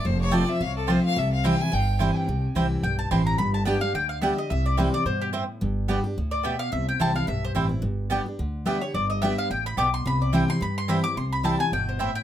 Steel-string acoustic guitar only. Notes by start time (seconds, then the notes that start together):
0.05 F2
0.31 F3 A3 C4 F4
0.47 C4 F4
0.61 C3
0.88 F3 A3 C4 F4
1.17 C3
1.44 E3 G3 C4 E4
1.59 C4 E4
1.72 G2
2.00 E3 G3 C4 E4
2.29 C3
2.55 E3 G3 C4 E4
2.84 G2
3.11 E3 G3 C4 E4
3.39 G2
3.66 G3 B3 D4 G4
3.81 D4 G4
3.95 D3
4.22 G3 B3 D4 G4
4.38 D4 G4
4.51 C3
4.78 E3 G3 C4 E4
4.94 C4 E4
5.07 B2
5.34 A2
5.61 G2
5.88 G3 B3 D4 G4
6.04 D4 G4
6.18 A2
6.45 B2
6.72 C3
7.00 E3 G3 C4 E4
7.14 C4 E4
7.27 G2
7.55 E3 G3 C4 E4
7.69 C4 E4
7.82 G2
8.10 G3 B3 D4 G4
8.26 D4 G4
8.39 D3
8.65 G3 B3 D4 G4
8.82 D4 G4
8.95 G2
9.23 G3 B3 D4 G4
9.51 A2
9.78 B2
10.06 C3
10.33 E3 G3 C4 E4
10.48 C4 E4
10.61 G2
10.89 E3 G3 C4 E4
11.04 C4 E4
11.17 C3
11.43 E3 G3 C4 E4
11.59 C4 E4
11.73 B2
12.01 A2